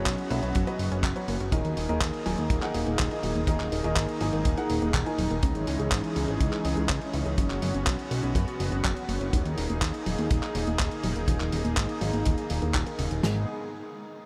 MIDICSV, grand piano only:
0, 0, Header, 1, 2, 480
1, 0, Start_track
1, 0, Tempo, 487805
1, 1502, Time_signature, 4, 2, 24, 8
1, 14029, End_track
2, 0, Start_track
2, 0, Title_t, "Grand piano"
2, 0, Program_c, 0, 0
2, 0, Note_on_c, 0, 54, 96
2, 0, Note_on_c, 0, 61, 81
2, 0, Note_on_c, 0, 66, 83
2, 0, Note_on_c, 0, 71, 83
2, 0, Note_on_c, 0, 73, 102
2, 271, Note_off_c, 0, 54, 0
2, 271, Note_off_c, 0, 66, 0
2, 272, Note_off_c, 0, 61, 0
2, 272, Note_off_c, 0, 71, 0
2, 272, Note_off_c, 0, 73, 0
2, 300, Note_on_c, 0, 54, 92
2, 300, Note_on_c, 0, 61, 81
2, 300, Note_on_c, 0, 66, 83
2, 300, Note_on_c, 0, 71, 83
2, 300, Note_on_c, 0, 76, 103
2, 632, Note_off_c, 0, 54, 0
2, 632, Note_off_c, 0, 61, 0
2, 632, Note_off_c, 0, 66, 0
2, 632, Note_off_c, 0, 71, 0
2, 632, Note_off_c, 0, 76, 0
2, 661, Note_on_c, 0, 54, 86
2, 661, Note_on_c, 0, 61, 82
2, 661, Note_on_c, 0, 66, 80
2, 661, Note_on_c, 0, 71, 79
2, 661, Note_on_c, 0, 75, 96
2, 1112, Note_off_c, 0, 54, 0
2, 1112, Note_off_c, 0, 61, 0
2, 1112, Note_off_c, 0, 66, 0
2, 1112, Note_off_c, 0, 71, 0
2, 1112, Note_off_c, 0, 75, 0
2, 1140, Note_on_c, 0, 54, 78
2, 1140, Note_on_c, 0, 61, 69
2, 1140, Note_on_c, 0, 66, 71
2, 1140, Note_on_c, 0, 71, 69
2, 1141, Note_on_c, 0, 73, 82
2, 1323, Note_off_c, 0, 54, 0
2, 1323, Note_off_c, 0, 61, 0
2, 1323, Note_off_c, 0, 66, 0
2, 1323, Note_off_c, 0, 71, 0
2, 1323, Note_off_c, 0, 73, 0
2, 1500, Note_on_c, 0, 63, 81
2, 1500, Note_on_c, 0, 68, 80
2, 1500, Note_on_c, 0, 70, 82
2, 1501, Note_on_c, 0, 51, 90
2, 1501, Note_on_c, 0, 75, 99
2, 1832, Note_off_c, 0, 51, 0
2, 1832, Note_off_c, 0, 63, 0
2, 1832, Note_off_c, 0, 68, 0
2, 1832, Note_off_c, 0, 70, 0
2, 1832, Note_off_c, 0, 75, 0
2, 1861, Note_on_c, 0, 51, 90
2, 1861, Note_on_c, 0, 75, 102
2, 1862, Note_on_c, 0, 63, 84
2, 1862, Note_on_c, 0, 68, 85
2, 1862, Note_on_c, 0, 70, 85
2, 2192, Note_off_c, 0, 75, 0
2, 2193, Note_off_c, 0, 51, 0
2, 2193, Note_off_c, 0, 63, 0
2, 2193, Note_off_c, 0, 68, 0
2, 2193, Note_off_c, 0, 70, 0
2, 2221, Note_on_c, 0, 51, 92
2, 2221, Note_on_c, 0, 63, 81
2, 2221, Note_on_c, 0, 68, 81
2, 2221, Note_on_c, 0, 70, 85
2, 2221, Note_on_c, 0, 80, 96
2, 2552, Note_off_c, 0, 63, 0
2, 2552, Note_off_c, 0, 68, 0
2, 2552, Note_off_c, 0, 80, 0
2, 2553, Note_off_c, 0, 51, 0
2, 2553, Note_off_c, 0, 70, 0
2, 2583, Note_on_c, 0, 51, 89
2, 2583, Note_on_c, 0, 63, 80
2, 2583, Note_on_c, 0, 68, 77
2, 2583, Note_on_c, 0, 70, 83
2, 2583, Note_on_c, 0, 78, 91
2, 3033, Note_off_c, 0, 51, 0
2, 3033, Note_off_c, 0, 63, 0
2, 3033, Note_off_c, 0, 68, 0
2, 3033, Note_off_c, 0, 70, 0
2, 3033, Note_off_c, 0, 78, 0
2, 3062, Note_on_c, 0, 51, 75
2, 3062, Note_on_c, 0, 70, 70
2, 3063, Note_on_c, 0, 63, 67
2, 3063, Note_on_c, 0, 68, 71
2, 3063, Note_on_c, 0, 75, 81
2, 3244, Note_off_c, 0, 51, 0
2, 3244, Note_off_c, 0, 63, 0
2, 3244, Note_off_c, 0, 68, 0
2, 3244, Note_off_c, 0, 70, 0
2, 3244, Note_off_c, 0, 75, 0
2, 3421, Note_on_c, 0, 68, 77
2, 3421, Note_on_c, 0, 70, 81
2, 3422, Note_on_c, 0, 51, 88
2, 3422, Note_on_c, 0, 63, 82
2, 3422, Note_on_c, 0, 75, 93
2, 3753, Note_off_c, 0, 51, 0
2, 3753, Note_off_c, 0, 63, 0
2, 3753, Note_off_c, 0, 68, 0
2, 3753, Note_off_c, 0, 70, 0
2, 3753, Note_off_c, 0, 75, 0
2, 3782, Note_on_c, 0, 51, 93
2, 3782, Note_on_c, 0, 63, 84
2, 3782, Note_on_c, 0, 68, 83
2, 3782, Note_on_c, 0, 70, 85
2, 3782, Note_on_c, 0, 75, 104
2, 4113, Note_off_c, 0, 51, 0
2, 4113, Note_off_c, 0, 63, 0
2, 4113, Note_off_c, 0, 68, 0
2, 4113, Note_off_c, 0, 70, 0
2, 4113, Note_off_c, 0, 75, 0
2, 4141, Note_on_c, 0, 80, 96
2, 4142, Note_on_c, 0, 51, 92
2, 4142, Note_on_c, 0, 63, 83
2, 4142, Note_on_c, 0, 68, 82
2, 4142, Note_on_c, 0, 70, 78
2, 4473, Note_off_c, 0, 51, 0
2, 4473, Note_off_c, 0, 63, 0
2, 4473, Note_off_c, 0, 68, 0
2, 4473, Note_off_c, 0, 70, 0
2, 4473, Note_off_c, 0, 80, 0
2, 4501, Note_on_c, 0, 51, 82
2, 4501, Note_on_c, 0, 78, 97
2, 4502, Note_on_c, 0, 63, 79
2, 4502, Note_on_c, 0, 68, 79
2, 4502, Note_on_c, 0, 70, 77
2, 4953, Note_off_c, 0, 51, 0
2, 4953, Note_off_c, 0, 63, 0
2, 4953, Note_off_c, 0, 68, 0
2, 4953, Note_off_c, 0, 70, 0
2, 4953, Note_off_c, 0, 78, 0
2, 4981, Note_on_c, 0, 70, 75
2, 4982, Note_on_c, 0, 63, 74
2, 4982, Note_on_c, 0, 68, 76
2, 4982, Note_on_c, 0, 80, 91
2, 4983, Note_on_c, 0, 51, 83
2, 5313, Note_off_c, 0, 51, 0
2, 5313, Note_off_c, 0, 63, 0
2, 5313, Note_off_c, 0, 68, 0
2, 5313, Note_off_c, 0, 70, 0
2, 5313, Note_off_c, 0, 80, 0
2, 14029, End_track
0, 0, End_of_file